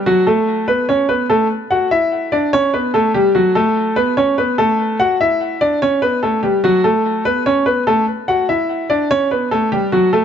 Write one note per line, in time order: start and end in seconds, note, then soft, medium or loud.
0.06 0.23 F#3 medium
0.06 0.23 F#4 medium
0.27 0.66 A3 medium
0.27 0.65 A4 medium
0.68 0.85 B3 medium
0.68 0.84 B4 medium
0.89 1.06 C#4 medium
0.89 1.05 C#5 medium
1.09 1.26 B3 medium
1.09 1.26 B4 medium
1.30 1.47 A3 medium
1.30 1.46 A4 medium
1.71 1.88 F#4 medium
1.71 1.87 F#5 medium
1.91 2.30 E4 medium
1.91 2.30 E5 medium
2.32 2.49 D4 medium
2.32 2.49 D5 medium
2.53 2.70 C#4 medium
2.53 2.70 C#5 loud
2.74 2.91 B3 medium
2.74 2.90 B4 medium
2.94 3.11 A3 medium
2.94 3.11 A4 medium
3.14 3.32 G3 medium
3.14 3.31 G4 medium
3.35 3.52 F#3 medium
3.35 3.51 F#4 medium
3.55 3.95 A3 medium
3.55 3.94 A4 medium
3.96 4.13 B3 medium
3.96 4.13 B4 medium
4.17 4.34 C#4 medium
4.17 4.34 C#5 medium
4.38 4.55 B3 medium
4.38 4.55 B4 medium
4.58 4.97 A3 medium
4.58 4.97 A4 medium
5.00 5.17 F#4 medium
5.00 5.16 F#5 medium
5.21 5.59 E4 medium
5.21 5.59 E5 medium
5.61 5.78 D4 medium
5.61 5.78 D5 medium
5.82 5.99 C#4 medium
5.82 5.99 C#5 loud
6.02 6.19 B3 medium
6.02 6.19 B4 medium
6.23 6.40 A3 medium
6.23 6.39 A4 medium
6.43 6.60 G3 medium
6.43 6.60 G4 medium
6.64 6.81 F#3 medium
6.64 6.80 F#4 medium
6.84 7.23 A3 medium
6.84 7.23 A4 medium
7.25 7.42 B3 medium
7.25 7.42 B4 medium
7.46 7.63 C#4 medium
7.46 7.63 C#5 medium
7.66 7.83 B3 medium
7.66 7.83 B4 medium
7.87 8.04 A3 medium
7.87 8.04 A4 medium
8.28 8.45 F#4 medium
8.28 8.45 F#5 medium
8.49 8.88 E4 medium
8.49 8.87 E5 medium
8.90 9.07 D4 medium
8.90 9.06 D5 medium
9.11 9.28 C#4 medium
9.11 9.27 C#5 loud
9.31 9.48 B3 medium
9.31 9.48 B4 medium
9.51 9.69 A3 medium
9.51 9.68 A4 medium
9.72 9.89 G3 medium
9.72 9.89 G4 medium
9.92 10.09 F#3 medium
9.92 10.09 F#4 medium
10.13 10.25 A3 medium
10.13 10.25 A4 medium